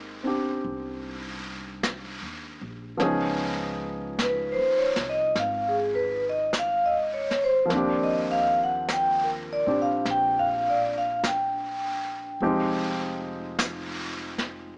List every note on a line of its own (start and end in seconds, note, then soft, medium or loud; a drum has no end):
0.00 0.60 G#1 medium
0.00 2.97 G#3 soft
0.00 2.98 A#3 soft
0.00 0.22 C4 soft
0.00 3.00 D#4 soft
0.00 0.26 G4 medium
0.23 2.99 C4 soft
0.23 2.99 D4 soft
0.23 3.01 G4 soft
0.64 2.17 C2 medium
0.64 brush sweep soft
1.83 brush sweep soft
1.83 snare soft
1.83 hi-hat pedal soft
2.21 2.58 D#2 medium
2.61 2.97 A#1 medium
2.97 4.53 C#2 medium
2.97 7.64 F3 medium
2.97 7.70 B3 soft
2.97 7.70 C#4 medium
2.97 brush sweep soft
2.97 snare soft
3.01 7.71 D#4 medium
3.01 7.71 G#4 medium
4.19 4.58 B4 medium
4.19 brush sweep soft
4.19 snare soft
4.19 hi-hat pedal soft
4.52 4.92 C5 medium
4.57 4.93 D#2 soft
4.78 5.06 C#5 medium
4.96 5.33 C2 medium
4.96 snare soft
5.09 5.31 D#5 medium
5.35 7.66 G#1 medium
5.35 5.75 F5 medium
5.35 brush sweep soft
5.35 snare soft
5.68 6.09 G#4 medium
5.95 6.23 B4 medium
6.29 6.50 D#5 medium
6.53 brush sweep soft
6.53 snare soft
6.53 hi-hat pedal soft
6.59 6.94 F5 medium
6.86 7.26 D#5 medium
7.14 7.41 C#5 medium
7.31 snare soft
7.44 7.66 C5 medium
7.65 12.39 F3 medium
7.65 12.40 A#3 soft
7.70 9.62 D#2 medium
7.70 9.64 C4 medium
7.70 9.66 D4 soft
7.70 8.10 D5 medium
7.70 brush sweep soft
7.70 snare soft
7.76 9.67 G4 medium
8.03 8.44 D#5 medium
8.31 8.59 F5 medium
8.64 8.85 F#5 medium
8.89 brush sweep soft
8.89 snare soft
8.89 hi-hat pedal soft
8.93 9.28 G5 medium
9.24 9.63 A#4 soft
9.53 9.78 D5 medium
9.66 10.03 A#2 medium
9.66 12.41 C4 soft
9.66 12.42 D4 soft
9.66 12.42 G4 soft
9.82 10.03 F5 medium
10.05 12.37 A#1 medium
10.05 brush sweep soft
10.05 snare soft
10.11 10.46 G5 medium
10.39 10.80 F5 medium
10.70 10.96 D5 medium
10.98 11.20 F5 medium
11.24 13.17 G5 medium
11.24 brush sweep soft
11.24 snare soft
11.24 hi-hat pedal soft
12.40 14.73 F1 medium
12.40 14.75 F3 soft
12.40 14.77 G#3 soft
12.40 14.76 C4 medium
12.40 14.77 D#4 medium
12.40 14.77 G4 medium
12.40 brush sweep soft
13.59 brush sweep soft
13.59 snare soft
13.59 hi-hat pedal medium
14.38 snare soft